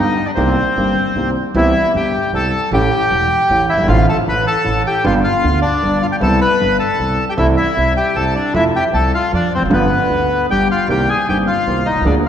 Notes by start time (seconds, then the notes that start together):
Already playing: G2 D3 G3 B3 D#5
0.00 G1 D#4 G4
0.26 D4 D5
0.35 C2 C3 D#3 A#3 C4 G4 C5
0.76 G1 G2 D#3 A#3 C4 G4
1.15 C2 C3 D#3 A#3 C4 G4
1.55 C2 C3 E3 B3 C4 E4 G4 E5
1.94 G1 G2 G4 G5
2.33 C2 C3 A4 A5
2.72 A1 A2 E3 A3 C#4 G4 G5
3.10 E1 E2
3.49 A1 A2
3.69 E4 E5
3.73 F#1
3.78 G1
3.83 G#1
3.88 A1 A2 D3 A3 C4 F4 F5
4.09 A4 A5
4.26 A1 A2 B4 B5
4.47 A4 A5
4.64 A1 A2
4.87 G4 G5
5.04 G1 G2 D3 G3 B3 F4 F5
5.24 F4 F5
5.44 D2 D3
5.62 D4 D5
5.83 G1 G2
6.02 F4 F5
6.12 G4 G5
6.20 C2 C3 G3 B3 E4 A4 A5
6.41 B4 B5
6.60 G1 G2
6.80 A4 A5
6.98 C2 C3
7.30 G4 G5
7.37 C2 C3 E3 A3 E4 E5
7.57 E4 E5
7.77 C2 C3
7.97 G4 G5
8.16 C2 C3 A4 A5
8.35 D4 D5
8.54 F2 C3 F3 A3 E4 E5
8.76 G4 G5
8.93 C2 C3 A4 A5
9.14 F4 F5
9.32 F2 F3 D4 D5
9.55 E1 E2 C4 C5
9.61 F1 F2
9.66 F#1 F#2 D3
9.70 G1 G2 G3 B3 F4 B4
10.09 D2 D3
10.49 G1 G2 G4 G5
10.71 F4 F5
10.88 C2 C3 D#3 A#3 C4 G4 G5
11.09 G#4 G#5
11.28 G1 G2 D#3 A#3 C4 G4 G5
11.47 F4 F5
11.66 C2 C3 D#3 A#3 C4 G4
11.85 D#4 D#5
11.91 B1
11.96 C2
12.01 C#2
12.05 D2 D3 F3 A#3 D4 G#4 D5